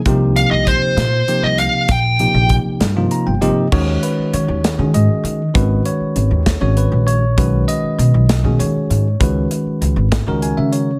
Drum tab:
CC |------|------|x-----|------|
HH |xxxxxx|xxxxxx|-xxxxx|xxxxxx|
SD |---o--|---o--|---o--|---o--|
BD |o-o---|o-o---|o-----|o--o--|

CC |------|------|
HH |xxxxxx|xxxxxx|
SD |---o--|---o--|
BD |o-----|o--o--|